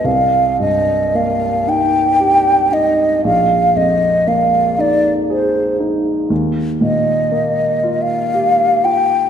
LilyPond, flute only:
\new Staff \with { instrumentName = "Flute" } { \time 3/4 \key c \minor \tempo 4 = 58 f''8 ees''8 f''8 g''4 ees''8 | f''8 ees''8 f''8 d''8 c''8 r8 | r8 ees''8~ \tuplet 3/2 { ees''4 f''8~ } f''8 g''8 | }